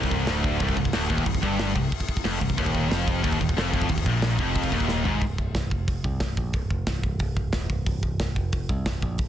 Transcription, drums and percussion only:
0.03 kick
0.11 kick, crash
0.27 snare, crash
0.44 kick, crash
0.60 kick, crash
0.69 kick
0.77 kick, crash
0.85 kick
0.93 snare, crash
1.10 kick, crash
1.18 kick
1.26 kick, crash
1.35 kick
1.43 kick, crash
1.59 snare, crash
1.76 kick, crash
1.92 kick, crash
2.00 kick
2.08 kick, crash
2.17 kick
2.25 snare, crash
2.41 kick, crash
2.50 kick
2.58 kick, crash
2.66 kick
2.75 kick, crash
2.91 snare, crash
3.08 kick, crash
3.24 kick, crash
3.33 kick
3.41 kick, crash
3.49 kick
3.58 snare, crash
3.74 kick, crash
3.82 kick
3.89 kick, crash
3.98 kick
4.06 kick, crash
4.22 snare, crash
4.38 kick, crash
4.55 kick, crash
4.64 kick
4.72 kick, crash
4.80 kick
4.88 snare
5.05 floor tom
5.21 kick, open hi-hat
5.38 kick
5.55 kick, snare, open hi-hat
5.71 kick
5.88 kick, open hi-hat
6.04 kick
6.20 kick, snare, open hi-hat
6.37 kick
6.53 kick, open hi-hat
6.71 kick
6.87 kick, snare, open hi-hat
7.03 kick
7.19 kick, open hi-hat
7.37 kick
7.53 kick, snare, open hi-hat
7.70 kick
7.86 kick, open hi-hat
8.03 kick
8.20 kick, snare, open hi-hat
8.36 kick
8.52 kick, open hi-hat
8.69 kick
8.86 kick, snare, open hi-hat
9.02 kick
9.18 kick, open hi-hat

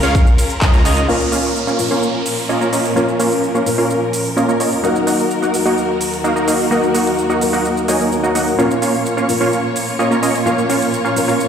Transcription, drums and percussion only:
0.03 closed hi-hat, shaker
0.15 kick, closed hi-hat, shaker
0.27 closed hi-hat, shaker
0.38 open hi-hat, ride, shaker
0.50 closed hi-hat, shaker
0.62 kick, clap, closed hi-hat, shaker
0.73 closed hi-hat, shaker
0.85 open hi-hat, ride, shaker
0.97 closed hi-hat, shaker
1.09 shaker
1.21 shaker
1.32 open hi-hat, shaker
1.44 shaker
1.56 shaker
1.68 shaker
1.79 open hi-hat, shaker
1.91 shaker
2.03 shaker
2.26 open hi-hat, shaker
2.38 shaker
2.50 shaker
2.61 shaker
2.73 open hi-hat, shaker
2.85 shaker
2.97 shaker
3.08 shaker
3.20 open hi-hat, shaker
3.32 shaker
3.44 shaker
3.55 shaker
3.66 open hi-hat, shaker
3.79 shaker
3.90 shaker
4.13 open hi-hat, shaker
4.25 shaker
4.37 shaker
4.49 shaker
4.60 open hi-hat, shaker
4.72 shaker
4.84 shaker
4.96 shaker
5.07 open hi-hat, shaker
5.19 shaker
5.31 shaker
5.43 shaker
5.54 open hi-hat, shaker
5.66 shaker
5.78 shaker
6.01 open hi-hat, shaker
6.13 shaker
6.25 shaker
6.36 shaker
6.48 open hi-hat, shaker
6.60 shaker
6.72 shaker
6.83 shaker
6.94 open hi-hat, shaker
7.07 shaker
7.18 shaker
7.30 shaker
7.41 open hi-hat, shaker
7.54 shaker
7.65 shaker
7.77 shaker
7.88 open hi-hat, shaker
8.00 shaker
8.12 shaker
8.24 shaker
8.35 open hi-hat, shaker
8.47 shaker
8.59 shaker
8.71 shaker
8.82 open hi-hat, shaker
8.94 shaker
9.06 shaker
9.18 shaker
9.29 open hi-hat, shaker
9.41 shaker
9.53 shaker
9.76 open hi-hat, shaker
9.88 shaker
10.00 shaker
10.12 shaker
10.23 open hi-hat, shaker
10.35 shaker
10.47 shaker
10.58 shaker
10.70 open hi-hat, shaker
10.82 shaker
10.94 shaker
11.05 shaker
11.16 open hi-hat, shaker
11.29 shaker
11.40 shaker

